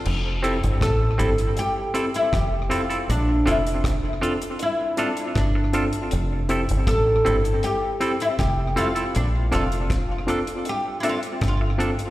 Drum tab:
CC |x---------------|----------------|----------------|----------------|
HH |--xxx-xxx-xxx-xx|x-xxx-xxx-xxx-xx|x-xxx-xxx-xxx-xx|x-xxx-xxx-xxx-xx|
SD |----r-------r---|----r-------r---|----r-------r---|----r-------r---|
BD |----o-------o---|----o-------o---|----o-------o---|----o-------o---|